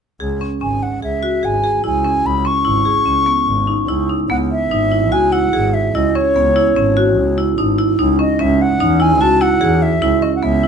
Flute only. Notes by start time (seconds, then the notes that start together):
0.62 G#5
0.83 F#5
1.04 E5
1.45 G#5
1.86 G#5
2.26 B5
2.47 C#6
4.31 F#5
4.51 E5
5.12 G#5
5.32 F#5
5.74 E5
5.95 D#5
6.15 C#5
8.20 D#5
8.41 E5
8.62 F#5
9.02 G#5
9.21 A5
9.42 F#5
9.82 E5
10.22 D#5
10.36 F#5
10.44 E5